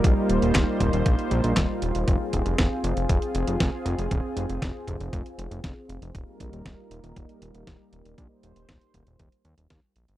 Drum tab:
HH |x-xxx-xxxxxxx-xx|x-xxx-xxxxxxx-xx|x-xxx-xxxxxxx-xx|x-xxx-xxxxxxx-xx|
CP |----x-------x---|----------------|----------------|----------------|
SD |----o-------o---|----o-------o---|----o-------o---|----o-------o---|
BD |o---o-o-o---o---|o-o-o---o---o---|o---o-o-o---o---|o-o-o---o---o---|

HH |x-xxxxxxxxxxx-xx|
CP |----------------|
SD |----o-------o---|
BD |o---o-o-o---o---|